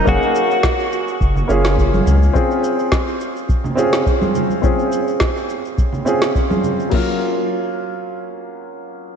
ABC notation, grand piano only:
X:1
M:4/4
L:1/8
Q:"Swing 16ths" 1/4=105
K:Gblyd
V:1 name="Grand piano"
[B,DAf]4- [B,DAf] [B,DFA]3 | [CDFA]4- [CDFA] [CDFA]3 | [CDFA]4- [CDFA] [CDFA]3 | [G,B,DF]8 |]